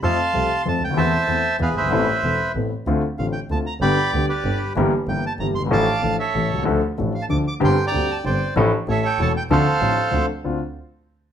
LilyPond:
<<
  \new Staff \with { instrumentName = "Bandoneon" } { \time 3/4 \key a \minor \tempo 4 = 190 << { c'''2 a''8 g''8 | a''2 f''8 e''8~ | e''2 r4 | \key d \minor r4 f''8 g''8 a''8 bes''8 |
b''4 r8 d''4 r8 | r4 g''8 a''8 bes''8 c'''8 | d'''4 r8 e''4 r8 | r4. f''16 a''16 d'''8 d'''8 |
c'''8. bes''8. a''8 g''8. r16 | r4 e''8 g''8 a''8 g''8 | f''2~ f''8 r8 | r2. | } \\ { <f'' a''>2 r4 | <c'' e''>2 <gis' b'>8 <b' c''>8~ | <b' c''>2 r4 | r2. |
<d'' g''>4. <g' b'>4. | r2. | <f'' a''>4. <a' cis''>4. | r2. |
g''8. <d'' g''>4~ <d'' g''>16 <c'' d''>4 | r4 <a' cis''>4. r8 | <a' c''>2~ <a' c''>8 r8 | r2. | } >> }
  \new Staff \with { instrumentName = "Grand piano" } { \clef bass \time 3/4 \key a \minor <f, f a c' a'>8 r8 <c, c f a c' a'>8 r8 <f, f a c' a'>8 r32 cis,32 d,32 dis,32 | <e, e a c' a'>8 r8 <e, e a c' a'>8 r8 <e, e gis b gis'>8 r32 fis,,32 g,,32 gis,,32 | <a,, a, e b c' a'>8 r8 <e,, e, e b c' a'>8 r8 <a,, a, e b c' a'>8 r8 | \key d \minor <d, d a c' f'>8 r8 <a,, a, d a c' f'>8 r8 <d, d a c' f'>8 r8 |
<g,, g, d g b g'>8 r8 <d, d g b g'>8 r8 <g,, g, d g b g'>8 r8 | <g,, g, e g bes g'>8 r8 <g,, g, e g bes g'>8 r8 <g,, g, e g bes g'>8 r32 fis,,32 g,,32 gis,,32 | <a,, a, f a d' a'>8 r8 <a,, a, f a d' a'>8 r8 <a,, a, e a cis' a'>8 r32 b,,32 c,32 cis,32 | <d, d f a d' a'>8 r8 <a,, a, f a d' a'>8 r8 <d, d f a d' a'>8 r8 |
<g,, g, d g c' g'>8 r8 <d, d g c' g'>8 r8 <g,, g, d g c' g'>8 r8 | <a,, a, f a d' a'>8 r8 <a,, a, e a cis' a'>8 r8 <e,, e, e a cis' a'>8 r8 | <d, d f c' d' a'>8 r8 <a,, a, f c' d' a'>8 r8 <d, d f c' d' a'>8 r8 | <d, c' d' f'>8 r2 r8 | }
  \new Staff \with { instrumentName = "Double bass" } { \clef bass \time 3/4 \key a \minor f,8 r8 c,8 r8 f,8 d,8 | e,8 r8 e,8 r8 e,8 g,,8 | a,,8 r8 e,,8 r8 a,,8 r8 | \key d \minor d,8 r8 a,,8 r8 d,8 r8 |
g,,8 r8 d,8 r8 g,,8 r8 | g,,8 r8 g,,8 r8 g,,8 g,,8 | a,,8 r8 a,,8 r8 a,,8 c,8 | d,8 r8 a,,8 r8 d,8 r8 |
g,,8 r8 d,8 r8 g,,8 r8 | a,,8 r8 a,,8 r8 e,,8 r8 | d,8 r8 a,,8 r8 d,8 r8 | d,8 r2 r8 | }
>>